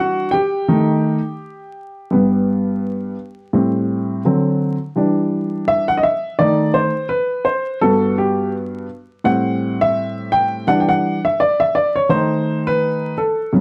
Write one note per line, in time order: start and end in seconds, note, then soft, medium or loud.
0.00 0.28 E3 medium
0.00 0.28 G3 soft
0.00 0.29 D4 medium
0.00 0.31 F#4 medium
0.00 0.33 F#5 medium
0.31 4.22 G4 medium
0.31 4.21 G5 medium
0.68 1.18 D#3 medium
0.68 1.18 A3 soft
0.68 1.18 D#4 medium
2.11 3.14 G2 medium
2.11 3.14 G3 soft
2.11 3.15 B3 medium
3.53 4.21 A2 medium
3.53 4.21 G3 medium
3.53 4.22 C4 medium
4.25 4.74 D3 medium
4.25 4.75 F#3 soft
4.25 4.75 C4 medium
4.96 5.99 E3 soft
4.96 5.99 G3 soft
4.96 6.00 D4 medium
5.68 5.87 E5 loud
5.88 5.98 F#5 medium
5.97 6.04 D#5 medium
6.03 6.40 E5 medium
6.39 6.89 D#3 medium
6.39 6.89 A3 soft
6.39 6.89 D#4 medium
6.39 6.76 D5 loud
6.74 7.08 C5 medium
7.09 7.47 B4 medium
7.45 7.79 C5 medium
7.81 8.85 G2 medium
7.81 8.86 B3 medium
7.81 8.86 F#4 soft
7.81 8.15 A4 medium
8.18 8.51 G4 medium
9.24 10.64 A2 medium
9.24 10.64 G3 medium
9.24 10.64 C4 medium
9.24 9.83 F#5 loud
9.81 10.34 E5 loud
10.32 10.69 G5 loud
10.67 11.17 E3 medium
10.67 11.17 G3 medium
10.67 11.18 D4 medium
10.67 10.81 F#5 loud
10.80 10.88 G5 medium
10.89 11.22 F#5 loud
11.25 11.40 E5 medium
11.40 11.61 D5 medium
11.60 11.76 E5 medium
11.75 11.94 D5 medium
11.96 12.11 C#5 medium
12.09 13.13 D#3 medium
12.09 13.13 A3 soft
12.09 13.14 D#4 medium
12.09 12.68 C5 medium
12.67 13.19 B4 loud
13.18 13.51 A4 medium
13.53 13.61 G2 medium
13.53 13.61 F#3 medium
13.53 13.61 B3 medium